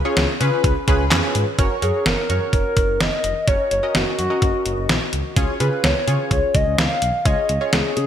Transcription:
0.05 0.31 C#4 medium
0.05 0.31 F4 medium
0.05 0.31 G#4 medium
0.05 0.31 C#5 loud
0.17 0.26 C#2 loud
0.17 snare loud
0.17 closed hi-hat medium
0.40 0.50 C#3 loud
0.40 0.75 C#4 loud
0.40 0.75 F4 medium
0.40 0.75 G#4 medium
0.40 0.75 B4 loud
0.40 closed hi-hat medium
0.64 0.73 C#2 loud
0.64 kick medium
0.64 closed hi-hat medium
0.88 0.97 C#2 medium
0.88 1.05 C#4 medium
0.88 1.05 F4 medium
0.88 1.05 G#4 medium
0.88 1.05 B4 loud
0.88 kick medium
0.88 closed hi-hat medium
1.00 1.09 C#2 loud
1.11 1.21 F2 medium
1.11 1.46 C#4 loud
1.11 1.46 F4 medium
1.11 1.46 G#4 medium
1.11 1.46 B4 loud
1.11 snare loud
1.11 clap loud
1.11 closed hi-hat medium
1.35 1.44 G#2 loud
1.35 closed hi-hat medium
1.59 1.68 F#1 loud
1.59 1.76 C#4 medium
1.59 1.76 F#4 medium
1.59 1.76 A#4 medium
1.59 1.76 C#5 loud
1.59 kick loud
1.59 closed hi-hat medium
1.82 1.92 F#2 loud
1.82 2.17 C#4 medium
1.82 2.17 F#4 medium
1.82 2.08 G#4 medium
1.82 2.17 A#4 medium
1.82 2.17 C#5 medium
1.82 closed hi-hat medium
2.06 2.15 F#1 loud
2.06 2.52 A#4 loud
2.06 snare loud
2.06 closed hi-hat medium
2.29 2.39 F#2 loud
2.29 2.99 C#4 medium
2.29 2.99 F#4 medium
2.29 2.99 A#4 medium
2.29 2.99 C#5 medium
2.29 closed hi-hat medium
2.53 2.62 F#1 loud
2.53 3.02 A#4 loud
2.53 kick medium
2.53 closed hi-hat medium
2.77 2.86 F#1 loud
2.77 kick medium
2.77 closed hi-hat medium
2.89 2.98 F#1 loud
3.00 3.10 F#1 loud
3.00 3.49 D#5 loud
3.00 snare loud
3.00 closed hi-hat medium
3.24 3.33 F1 loud
3.24 closed hi-hat medium
3.48 3.57 F#1 loud
3.48 3.74 C#4 medium
3.48 3.74 F#4 medium
3.48 3.74 A#4 medium
3.48 3.70 C#5 loud
3.48 3.74 C#5 medium
3.48 kick loud
3.48 closed hi-hat medium
3.71 3.81 F#1 loud
3.71 3.96 C#5 medium
3.71 closed hi-hat medium
3.83 4.18 C#4 medium
3.83 4.18 F#4 medium
3.83 4.18 A#4 medium
3.83 4.18 D#5 medium
3.95 4.04 F#1 loud
3.95 4.18 F#4 medium
3.95 snare loud
3.95 closed hi-hat medium
4.18 4.28 F#2 loud
4.18 4.85 F#4 medium
4.18 closed hi-hat medium
4.30 5.00 C#4 medium
4.30 5.00 F#4 medium
4.30 5.00 A#4 medium
4.30 5.00 D#5 medium
4.42 4.51 F#1 loud
4.42 kick medium
4.42 closed hi-hat medium
4.66 4.75 F#1 medium
4.66 closed hi-hat medium
4.77 4.87 F#1 loud
4.89 4.99 A#1 medium
4.89 snare loud
4.89 closed hi-hat medium
5.13 5.22 C#2 medium
5.13 closed hi-hat medium
5.36 5.46 C#2 loud
5.36 5.54 C#4 medium
5.36 5.54 F4 medium
5.36 5.54 G#4 medium
5.36 5.54 C#5 loud
5.36 kick loud
5.36 closed hi-hat medium
5.60 5.70 C#3 loud
5.60 5.95 C#4 medium
5.60 5.95 F4 medium
5.60 5.95 G#4 medium
5.60 5.85 B4 medium
5.60 5.95 B4 medium
5.60 closed hi-hat medium
5.84 5.93 C#2 loud
5.84 6.30 C#5 loud
5.84 snare loud
5.84 closed hi-hat medium
6.07 6.17 C#3 loud
6.07 6.77 C#4 medium
6.07 6.77 F4 medium
6.07 6.77 G#4 medium
6.07 6.77 C#5 medium
6.07 closed hi-hat medium
6.31 6.40 C#2 loud
6.31 6.56 C#5 loud
6.31 kick medium
6.31 closed hi-hat medium
6.55 6.64 C#2 loud
6.55 6.79 D#5 loud
6.55 kick medium
6.55 closed hi-hat medium
6.67 6.76 C#2 loud
6.78 6.88 C#2 loud
6.78 7.27 F5 loud
6.78 snare loud
6.78 closed hi-hat medium
7.02 7.11 B1 medium
7.02 closed hi-hat medium
7.25 7.35 C#2 loud
7.25 7.51 C#4 medium
7.25 7.51 F4 medium
7.25 7.51 G#4 medium
7.25 7.51 C#5 medium
7.25 7.74 D#5 loud
7.25 kick loud
7.25 closed hi-hat medium
7.49 7.59 C#2 loud
7.49 closed hi-hat medium
7.61 7.96 C#4 medium
7.61 7.96 F4 medium
7.61 7.96 G#4 medium
7.61 7.96 C#5 medium
7.73 7.82 C#2 loud
7.73 7.96 G#4 medium
7.73 snare loud
7.73 closed hi-hat medium
7.96 8.06 C#3 loud
7.96 8.07 G#4 medium
7.96 closed hi-hat medium

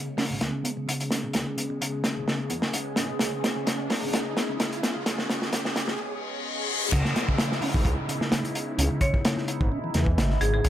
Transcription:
0.00 0.17 C#3 medium
0.00 6.88 C#3 medium
0.00 6.88 G#3 medium
0.00 6.88 B3 medium
0.00 6.88 C#4 medium
0.00 6.91 G#4 medium
0.00 riser medium
0.17 0.25 C#4 medium
0.17 snare soft
0.17 open hi-hat medium
0.30 0.39 G#1 loud
0.30 0.34 B2 medium
0.41 0.51 C#2 medium
0.41 0.63 C#3 medium
0.41 snare soft
0.41 closed hi-hat medium
0.64 0.72 B3 medium
0.64 closed hi-hat medium
0.77 0.86 C#3 medium
0.88 1.10 C#3 medium
0.88 closed hi-hat medium
1.00 closed hi-hat soft
1.11 1.19 C#4 medium
1.11 snare medium
1.11 closed hi-hat medium
1.23 1.27 B2 medium
1.33 1.45 C#2 loud
1.33 1.56 C#3 loud
1.33 snare medium
1.33 closed hi-hat medium
1.57 1.65 B3 medium
1.57 closed hi-hat medium
1.70 1.80 C#3 medium
1.81 2.03 C#3 medium
1.81 closed hi-hat medium
2.04 2.12 C#4 medium
2.04 snare medium
2.04 closed hi-hat medium
2.16 2.25 G#1 medium
2.16 2.21 B2 medium
2.28 2.49 C#3 loud
2.28 snare medium
2.50 2.61 E2 medium
2.50 2.58 B3 medium
2.50 closed hi-hat medium
2.62 2.73 C#3 medium
2.62 snare medium
2.73 2.96 C#3 medium
2.73 closed hi-hat medium
2.96 3.08 G#1 medium
2.96 3.05 C#4 medium
2.96 snare medium
2.96 closed hi-hat medium
3.10 3.14 B2 medium
3.19 3.31 C#2 loud
3.19 3.42 C#3 loud
3.19 snare medium
3.19 closed hi-hat medium
3.44 3.51 B3 loud
3.44 snare medium
3.44 closed hi-hat medium
3.56 3.65 C#3 medium
3.67 3.89 C#3 loud
3.67 snare medium
3.67 closed hi-hat medium
3.90 3.98 B3 loud
3.90 snare medium
3.90 open hi-hat medium
4.02 4.11 G#1 loud
4.02 4.11 C#3 medium
4.13 4.23 C#2 loud
4.13 4.35 C#3 loud
4.13 snare medium
4.13 closed hi-hat loud
4.36 4.44 B3 loud
4.36 snare medium
4.36 closed hi-hat medium
4.49 4.58 C#3 medium
4.60 4.82 C#3 loud
4.60 snare medium
4.60 closed hi-hat medium
4.72 closed hi-hat soft
4.83 4.91 B3 loud
4.83 snare medium
4.83 closed hi-hat medium
4.95 5.04 C#3 medium
5.06 5.17 C#2 loud
5.06 5.27 C#3 loud
5.06 snare medium
5.06 closed hi-hat medium
5.19 snare medium
5.29 5.51 C#3 loud
5.29 snare loud
5.29 closed hi-hat medium
5.42 snare medium
5.53 5.74 C#3 loud
5.53 snare medium
5.53 closed hi-hat loud
5.65 snare medium
5.75 5.97 C#3 loud
5.75 snare medium
5.75 closed hi-hat medium
5.88 5.97 G#1 loud
5.88 snare medium
5.99 reverse cymbal medium
6.92 7.03 C#2 loud
6.92 10.69 C#3 medium
6.92 7.14 C#3 loud
6.92 10.69 G#3 medium
6.92 10.69 B3 medium
6.92 10.69 D#4 medium
6.92 10.69 E4 medium
6.92 kick loud
6.92 closed hi-hat medium
6.92 crash medium
6.92 downlifter medium
7.05 snare soft
7.16 7.23 B3 loud
7.16 snare medium
7.16 closed hi-hat medium
7.28 7.38 C#3 medium
7.28 kick medium
7.38 7.61 C#3 medium
7.38 snare loud
7.38 closed hi-hat medium
7.52 snare medium
7.62 7.70 C#4 medium
7.62 open hi-hat medium
7.74 7.83 G#1 loud
7.74 7.79 B2 medium
7.74 kick loud
7.85 7.96 C#2 loud
7.85 kick loud
7.85 closed hi-hat medium
8.09 8.20 C#3 loud
8.09 closed hi-hat medium
8.21 snare soft
8.32 8.43 C#3 medium
8.32 snare loud
8.32 closed hi-hat medium
8.45 closed hi-hat soft
8.55 closed hi-hat medium
8.78 8.89 C#2 loud
8.78 8.86 C#4 medium
8.78 closed hi-hat loud
8.91 9.01 C#3 loud
9.01 9.13 C#3 loud
9.01 9.48 C#5 medium
9.01 kick medium
9.01 closed hi-hat medium
9.14 kick medium
9.25 9.37 C#3 medium
9.25 snare loud
9.25 closed hi-hat loud
9.37 snare soft
9.48 closed hi-hat medium
9.61 9.70 G#1 loud
9.61 kick loud
9.72 9.79 C#4 medium
9.84 9.90 E3 medium
9.94 10.19 E2 medium
9.94 10.06 C#3 loud
9.94 snare soft
9.94 closed hi-hat medium
10.06 kick medium
10.18 10.38 G#1 loud
10.18 10.29 C#3 medium
10.18 snare loud
10.18 closed hi-hat medium
10.30 10.34 C#3 loud
10.30 snare soft
10.41 10.61 G#1 medium
10.41 10.49 G#4 medium
10.41 closed hi-hat medium
10.54 10.61 G#4 medium
10.64 10.69 C#2 loud
10.64 10.69 C#3 loud
10.64 kick loud
10.64 closed hi-hat medium

